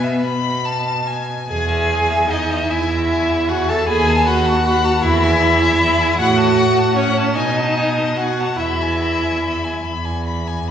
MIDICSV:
0, 0, Header, 1, 5, 480
1, 0, Start_track
1, 0, Key_signature, 4, "major"
1, 0, Tempo, 832178
1, 862, Time_signature, 6, 3, 24, 8
1, 862, Tempo, 802139
1, 1822, Tempo, 775194
1, 4702, Tempo, 834492
1, 6404, End_track
2, 0, Start_track
2, 0, Title_t, "Violin"
2, 0, Program_c, 0, 40
2, 19, Note_on_c, 0, 76, 42
2, 140, Note_off_c, 0, 76, 0
2, 145, Note_on_c, 0, 83, 54
2, 375, Note_on_c, 0, 81, 50
2, 384, Note_off_c, 0, 83, 0
2, 620, Note_on_c, 0, 80, 42
2, 628, Note_off_c, 0, 81, 0
2, 860, Note_off_c, 0, 80, 0
2, 866, Note_on_c, 0, 80, 44
2, 979, Note_on_c, 0, 76, 38
2, 988, Note_off_c, 0, 80, 0
2, 1105, Note_on_c, 0, 80, 39
2, 1114, Note_off_c, 0, 76, 0
2, 1221, Note_on_c, 0, 76, 37
2, 1230, Note_off_c, 0, 80, 0
2, 1335, Note_off_c, 0, 76, 0
2, 1338, Note_on_c, 0, 80, 45
2, 1461, Note_on_c, 0, 76, 41
2, 1470, Note_off_c, 0, 80, 0
2, 1583, Note_on_c, 0, 80, 47
2, 1592, Note_off_c, 0, 76, 0
2, 1700, Note_on_c, 0, 76, 42
2, 1709, Note_off_c, 0, 80, 0
2, 1817, Note_off_c, 0, 76, 0
2, 1820, Note_on_c, 0, 80, 46
2, 1943, Note_on_c, 0, 76, 44
2, 1952, Note_off_c, 0, 80, 0
2, 2063, Note_on_c, 0, 80, 42
2, 2073, Note_off_c, 0, 76, 0
2, 2196, Note_on_c, 0, 76, 45
2, 2205, Note_off_c, 0, 80, 0
2, 2305, Note_off_c, 0, 76, 0
2, 2308, Note_on_c, 0, 83, 47
2, 2431, Note_on_c, 0, 81, 46
2, 2440, Note_off_c, 0, 83, 0
2, 2551, Note_on_c, 0, 83, 47
2, 2560, Note_off_c, 0, 81, 0
2, 2664, Note_on_c, 0, 81, 44
2, 2673, Note_off_c, 0, 83, 0
2, 2783, Note_off_c, 0, 81, 0
2, 2792, Note_on_c, 0, 83, 57
2, 2904, Note_on_c, 0, 81, 51
2, 2913, Note_off_c, 0, 83, 0
2, 3017, Note_off_c, 0, 81, 0
2, 3021, Note_on_c, 0, 83, 55
2, 3145, Note_on_c, 0, 80, 49
2, 3154, Note_off_c, 0, 83, 0
2, 3262, Note_on_c, 0, 83, 50
2, 3272, Note_off_c, 0, 80, 0
2, 3381, Note_on_c, 0, 80, 47
2, 3390, Note_off_c, 0, 83, 0
2, 3494, Note_off_c, 0, 80, 0
2, 3498, Note_on_c, 0, 83, 48
2, 3624, Note_on_c, 0, 80, 49
2, 3633, Note_off_c, 0, 83, 0
2, 3734, Note_off_c, 0, 80, 0
2, 3737, Note_on_c, 0, 78, 59
2, 3851, Note_on_c, 0, 81, 50
2, 3860, Note_off_c, 0, 78, 0
2, 3978, Note_on_c, 0, 78, 46
2, 3988, Note_off_c, 0, 81, 0
2, 4105, Note_on_c, 0, 81, 47
2, 4114, Note_off_c, 0, 78, 0
2, 4219, Note_off_c, 0, 81, 0
2, 4228, Note_on_c, 0, 78, 53
2, 4345, Note_on_c, 0, 81, 47
2, 4354, Note_off_c, 0, 78, 0
2, 4455, Note_off_c, 0, 81, 0
2, 4459, Note_on_c, 0, 80, 50
2, 4591, Note_on_c, 0, 81, 43
2, 4600, Note_off_c, 0, 80, 0
2, 4710, Note_on_c, 0, 80, 41
2, 4719, Note_off_c, 0, 81, 0
2, 4831, Note_on_c, 0, 81, 37
2, 4840, Note_off_c, 0, 80, 0
2, 4944, Note_off_c, 0, 81, 0
2, 4950, Note_on_c, 0, 80, 34
2, 5075, Note_on_c, 0, 81, 34
2, 5084, Note_off_c, 0, 80, 0
2, 5186, Note_off_c, 0, 81, 0
2, 5189, Note_on_c, 0, 83, 35
2, 5315, Note_on_c, 0, 80, 31
2, 5324, Note_off_c, 0, 83, 0
2, 5433, Note_on_c, 0, 83, 31
2, 5442, Note_off_c, 0, 80, 0
2, 5553, Note_on_c, 0, 80, 30
2, 5561, Note_off_c, 0, 83, 0
2, 5665, Note_off_c, 0, 80, 0
2, 5674, Note_on_c, 0, 83, 38
2, 5789, Note_on_c, 0, 80, 33
2, 5798, Note_off_c, 0, 83, 0
2, 5907, Note_on_c, 0, 83, 34
2, 5916, Note_off_c, 0, 80, 0
2, 6024, Note_on_c, 0, 80, 30
2, 6033, Note_off_c, 0, 83, 0
2, 6141, Note_off_c, 0, 80, 0
2, 6144, Note_on_c, 0, 83, 32
2, 6269, Note_on_c, 0, 80, 30
2, 6277, Note_off_c, 0, 83, 0
2, 6385, Note_on_c, 0, 83, 27
2, 6394, Note_off_c, 0, 80, 0
2, 6404, Note_off_c, 0, 83, 0
2, 6404, End_track
3, 0, Start_track
3, 0, Title_t, "Violin"
3, 0, Program_c, 1, 40
3, 0, Note_on_c, 1, 71, 56
3, 130, Note_off_c, 1, 71, 0
3, 859, Note_on_c, 1, 80, 66
3, 1346, Note_on_c, 1, 75, 54
3, 1355, Note_off_c, 1, 80, 0
3, 1582, Note_on_c, 1, 76, 51
3, 1591, Note_off_c, 1, 75, 0
3, 2064, Note_on_c, 1, 78, 60
3, 2073, Note_off_c, 1, 76, 0
3, 2186, Note_on_c, 1, 81, 61
3, 2195, Note_off_c, 1, 78, 0
3, 2299, Note_off_c, 1, 81, 0
3, 2303, Note_on_c, 1, 80, 70
3, 2541, Note_on_c, 1, 78, 68
3, 2550, Note_off_c, 1, 80, 0
3, 3013, Note_on_c, 1, 76, 77
3, 3022, Note_off_c, 1, 78, 0
3, 3727, Note_off_c, 1, 76, 0
3, 3731, Note_on_c, 1, 78, 77
3, 4211, Note_on_c, 1, 73, 64
3, 4221, Note_off_c, 1, 78, 0
3, 4451, Note_off_c, 1, 73, 0
3, 4455, Note_on_c, 1, 75, 60
3, 4941, Note_on_c, 1, 78, 55
3, 4949, Note_off_c, 1, 75, 0
3, 5181, Note_on_c, 1, 76, 50
3, 5189, Note_off_c, 1, 78, 0
3, 5899, Note_off_c, 1, 76, 0
3, 6404, End_track
4, 0, Start_track
4, 0, Title_t, "Viola"
4, 0, Program_c, 2, 41
4, 0, Note_on_c, 2, 59, 63
4, 127, Note_off_c, 2, 59, 0
4, 862, Note_on_c, 2, 68, 70
4, 1320, Note_off_c, 2, 68, 0
4, 1343, Note_on_c, 2, 63, 60
4, 1586, Note_on_c, 2, 64, 61
4, 1595, Note_off_c, 2, 63, 0
4, 2061, Note_on_c, 2, 66, 72
4, 2070, Note_off_c, 2, 64, 0
4, 2182, Note_off_c, 2, 66, 0
4, 2193, Note_on_c, 2, 69, 73
4, 2298, Note_off_c, 2, 69, 0
4, 2301, Note_on_c, 2, 68, 80
4, 2538, Note_off_c, 2, 68, 0
4, 2544, Note_on_c, 2, 66, 79
4, 3012, Note_off_c, 2, 66, 0
4, 3020, Note_on_c, 2, 64, 82
4, 3732, Note_on_c, 2, 66, 79
4, 3741, Note_off_c, 2, 64, 0
4, 4208, Note_off_c, 2, 66, 0
4, 4212, Note_on_c, 2, 61, 65
4, 4453, Note_on_c, 2, 63, 70
4, 4462, Note_off_c, 2, 61, 0
4, 4934, Note_off_c, 2, 63, 0
4, 4937, Note_on_c, 2, 66, 64
4, 5172, Note_on_c, 2, 64, 52
4, 5181, Note_off_c, 2, 66, 0
4, 5894, Note_off_c, 2, 64, 0
4, 6404, End_track
5, 0, Start_track
5, 0, Title_t, "Cello"
5, 0, Program_c, 3, 42
5, 145, Note_on_c, 3, 47, 52
5, 780, Note_off_c, 3, 47, 0
5, 869, Note_on_c, 3, 40, 59
5, 1503, Note_off_c, 3, 40, 0
5, 1588, Note_on_c, 3, 40, 56
5, 2221, Note_off_c, 3, 40, 0
5, 2309, Note_on_c, 3, 39, 62
5, 2940, Note_off_c, 3, 39, 0
5, 3020, Note_on_c, 3, 40, 70
5, 3650, Note_off_c, 3, 40, 0
5, 3738, Note_on_c, 3, 45, 70
5, 4370, Note_off_c, 3, 45, 0
5, 4453, Note_on_c, 3, 47, 63
5, 5092, Note_off_c, 3, 47, 0
5, 5180, Note_on_c, 3, 40, 50
5, 5813, Note_off_c, 3, 40, 0
5, 5900, Note_on_c, 3, 40, 45
5, 6404, Note_off_c, 3, 40, 0
5, 6404, End_track
0, 0, End_of_file